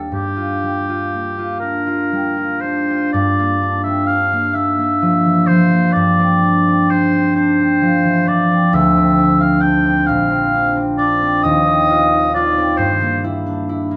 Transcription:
Already playing: harp D#2 G3 A#3 D4 G4 A#4
0.12 harp G2, oboe G4
0.36 harp F4
0.63 harp G3
0.89 harp F4
1.14 harp A#3
1.38 harp F4
1.60 harp D4, oboe A#4
1.87 harp F4
2.12 harp G3
2.37 harp F4
2.61 harp D4, oboe C5
2.90 harp F4
3.12 harp G2, oboe D5
3.39 harp A#3
3.62 harp D4
3.83 harp C4, oboe E5
4.06 harp D4, oboe F5
4.33 harp A#3
4.54 harp D4, oboe E5
4.79 harp A#3
5.02 harp F3
5.25 harp E3
5.47 harp F3, oboe C5
5.71 harp A#3
5.92 harp G2, oboe D5
6.19 harp C4
6.43 harp D4
6.67 harp C4
6.90 harp D4, oboe C5
7.13 harp C4
7.36 harp D4, oboe C5
7.59 harp C4
7.82 harp F3
8.04 harp E3
8.28 harp F3, oboe D5
8.51 harp C4
8.73 harp D2, oboe E5
8.97 harp C4
9.19 harp D4
9.40 harp C4, oboe F5
9.61 harp D4, oboe G5
9.85 harp C4
10.07 harp A#1, oboe F5
10.30 harp C4
10.54 harp D4
10.76 harp C4
10.98 harp D4, oboe D5
11.22 harp C4
11.43 harp D#2, oboe D#5
11.67 harp C4
11.90 harp F4
12.13 harp D#4
12.34 harp F4, oboe D5
12.58 harp C4
12.77 harp G2, oboe C5
13.01 harp A#3
13.24 harp E4
13.46 harp D4
13.69 harp E4
13.91 harp A#3

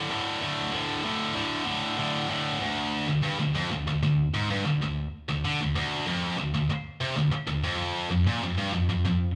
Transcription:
0.10 distorted electric guitar D2 A2 D3
0.41 distorted electric guitar D2 A2 D3
0.73 distorted electric guitar D2 A2 D3
1.04 distorted electric guitar D2 A2 D3
1.35 distorted electric guitar D2 A2 D3
1.66 distorted electric guitar D2 A2 D3
1.98 distorted electric guitar D2 A2 D3
2.29 distorted electric guitar D2 A2 D3
2.60 distorted electric guitar D2
3.08 distorted electric guitar D2
3.23 distorted electric guitar G2
3.40 distorted electric guitar D2
3.55 distorted electric guitar F2
3.71 distorted electric guitar D2
3.87 distorted electric guitar D2
4.03 distorted electric guitar D2
4.34 distorted electric guitar G#2
4.51 distorted electric guitar G2
4.66 distorted electric guitar D2
4.82 distorted electric guitar D2
5.29 distorted electric guitar D2
5.45 distorted electric guitar D3
5.61 distorted electric guitar D2
5.76 distorted electric guitar D2
6.07 distorted electric guitar F2
6.38 distorted electric guitar D2
6.54 distorted electric guitar D2
6.70 muted distorted electric guitar stroke
7.01 distorted electric guitar C3
7.17 distorted electric guitar D2
7.32 muted distorted electric guitar stroke
7.48 distorted electric guitar D2
7.64 distorted electric guitar F2
8.11 distorted electric guitar F2
8.27 distorted electric guitar A#2
8.43 distorted electric guitar F2
8.58 distorted electric guitar G2
8.73 distorted electric guitar F2
8.89 distorted electric guitar F2
9.05 distorted electric guitar F2

